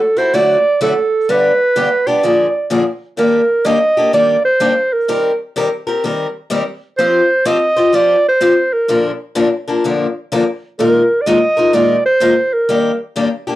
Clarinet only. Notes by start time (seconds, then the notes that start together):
Already playing: A4
0.18 C5
0.35 D5
0.82 A4
1.30 B4
2.07 D5
3.18 A#4
3.66 D#5
4.14 D5
4.45 C5
4.93 A#4
6.98 C5
7.46 D#5
7.95 D5
8.28 C5
8.73 A#4
10.79 A#4
11.21 D5
11.26 D#5
11.74 D5
12.05 C5
12.53 A#4